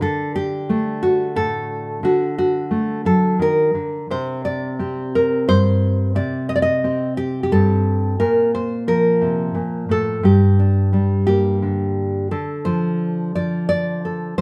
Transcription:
Already playing: D4
0.01 D3 A4
0.36 G4
0.69 A3 D4
1.03 F#4
1.36 A2 A4
2.03 D3 F#4
2.38 F#4
2.71 A3
3.05 F#3 A4
3.39 D#3 A#4
3.75 D3
4.11 C3 C5
4.45 D5
4.79 C4 G4
5.15 A#4
5.48 G2 C5
6.15 C3 D5
6.49 D#5
6.56 D5
6.62 D#5
6.84 C4 G4
7.17 G4
7.43 G4
7.52 G2 A4
8.20 A#2 A#4
8.55 C5
8.87 F3 A#4
9.21 C3
9.54 A#2
9.89 A2 A4
10.23 G2 G4
10.59 D4
10.93 G3 D4
11.27 A#3 G4
11.62 D3
12.31 D3 A4
12.65 F3 C5
13.35 F3 D5
13.69 D5
14.05 A4
14.38 F3 C5

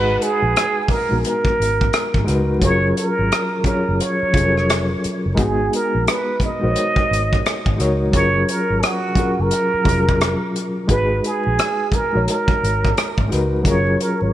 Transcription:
Already playing: G#1 G#3 D#4 F#4 G#4 B4
0.22 G#4, closed hi-hat
0.42 A#1
0.56 cross-stick, closed hi-hat
0.88 A#4, muted fingered electric bass stroke, kick, open hi-hat
1.08 A#1 G#3 D#4 F#4 A#4
1.13 B3
1.25 A#4, closed hi-hat
1.45 muted fingered electric bass stroke, kick
1.60 G#1, closed hi-hat
1.81 kick
1.93 cross-stick, closed hi-hat
2.14 G#1, kick
2.25 C#2 G#3 D#4 F#4 A#4, closed hi-hat
2.29 B4, cross-stick
2.60 F#1 F#3 C#4 F4 G#4, kick, closed hi-hat
2.64 A#4 C#5
2.97 A#4, closed hi-hat
3.19 G#1
3.32 cross-stick, closed hi-hat
3.63 F#3 C#4 F4 G#4 A#4, muted fingered electric bass stroke, kick, closed hi-hat
3.67 C#5
3.89 F#1
4.00 C#5, closed hi-hat
4.23 muted fingered electric bass stroke
4.32 F1 F#3 C#4 F4 G#4, kick
4.37 A4, closed hi-hat
4.44 A#4
4.57 cross-stick
4.69 cross-stick, closed hi-hat
5.04 muted fingered electric bass stroke, closed hi-hat
5.26 F#1
5.34 G#3 D#4 F#4 A#4, kick
5.38 G#1 B3 G#4, closed hi-hat
5.73 A#4, closed hi-hat
5.95 A#1
6.07 B4, cross-stick, closed hi-hat
6.40 muted fingered electric bass stroke, kick, closed hi-hat
6.44 D#5
6.60 A#1 G#3 D#4 F#4 A#4
6.64 C5
6.71 C#5
6.76 closed hi-hat
6.96 muted fingered electric bass stroke, kick
7.11 G#1, closed hi-hat
7.33 kick, cross-stick
7.46 cross-stick, closed hi-hat
7.66 G#1, kick
7.77 C#2 G#3 D#4 F#4 A#4, cross-stick, closed hi-hat
7.81 C#5
8.11 F#1 F#3 C#4 F4 G#4 C#5, kick, closed hi-hat
8.16 A#4
8.48 A#4, closed hi-hat
8.70 G#1
8.83 F#4, cross-stick, closed hi-hat
9.14 F#3 C#4 F4 G#4, muted fingered electric bass stroke, kick, closed hi-hat
9.19 A#4
9.39 F#1 A#4
9.51 closed hi-hat
9.74 muted fingered electric bass stroke
9.84 F1 F#3 C#4 F4 G#4, kick
9.88 A#4, closed hi-hat
10.09 kick, cross-stick
10.21 cross-stick, closed hi-hat
10.56 closed hi-hat
10.87 G#1 G#3 D#4 F#4 G#4 B4, kick, closed hi-hat
10.92 B4
11.24 G#4, closed hi-hat
11.47 A#1
11.59 cross-stick, closed hi-hat
11.92 A#4, muted fingered electric bass stroke, kick, closed hi-hat
12.12 A#1 G#3 D#4 F#4 A#4
12.17 C#5
12.28 A#4, closed hi-hat
12.48 muted fingered electric bass stroke, kick
12.63 G#1, closed hi-hat
12.85 kick, cross-stick
12.97 cross-stick, closed hi-hat
13.18 G#1, kick
13.28 G#3 D#4 F#4 A#4, closed hi-hat
13.32 C#2 B4, cross-stick
13.63 F#1 F#3 C#4 F4 G#4, kick, closed hi-hat
13.67 A#4 C#5
14.00 A#4, closed hi-hat
14.22 G#1 C#5

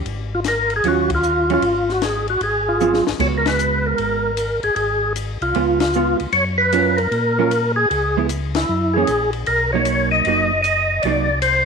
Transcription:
0.05 G#1, ride
0.35 F4
0.44 A#4, snare, hi-hat pedal, ride
0.70 ride
0.76 G#4
0.84 D#2 F#3 C#4 F4, ride
0.88 F#4
1.10 kick, ride
1.15 F4
1.23 hi-hat pedal
1.50 F#3 C#4 F4, ride
1.62 G#1, ride
1.89 F#4, snare
2.02 G#4, snare, hi-hat pedal, ride
2.28 F#4, ride
2.41 G#1 G#4, ride
2.69 F4
2.80 F#3 C4 F4, hi-hat pedal
2.94 snare
3.07 G#1, snare
3.19 C#2 G#3 B3 F#4 C#5, kick, crash
3.38 A#4
3.46 B4, snare, ride
3.59 hi-hat pedal
3.86 A#4
3.98 G#1, ride
4.37 hi-hat pedal, ride
4.63 G#1 G#4, ride
4.76 G#1 G#4, ride
5.16 hi-hat pedal, ride
5.41 C2 F4, ride
5.55 C#2 G#3 B3 F4, ride
5.80 F4, snare, ride
5.93 G#3 B3 F4, hi-hat pedal
6.20 C#2, ride
6.32 F#2 C#5, ride
6.58 B4
6.72 F#3 C#4 F4 A#4, hi-hat pedal, ride
6.97 A#4, ride
7.12 A#2, ride
7.39 F#3 C#4 F4 A#4
7.51 hi-hat pedal, ride
7.76 G#4
7.90 C#2 G#4, ride
8.17 G#3 B3 E4
8.29 hi-hat pedal, ride
8.55 E4, snare, ride
8.69 F#2
8.94 E3 A#3 G#4
8.98 C#4
9.07 A#1, hi-hat pedal, ride
9.33 ride
9.46 B1 A#4, ride
9.73 F#3 A#3 D#4 C#5
9.85 hi-hat pedal, ride
10.11 D#5
10.25 F#1 F#3 A#3 D#4, ride
10.62 D#5, hi-hat pedal, ride
11.02 C2 F#3 D5, ride
11.06 A#3 D#4
11.42 C5, hi-hat pedal, ride

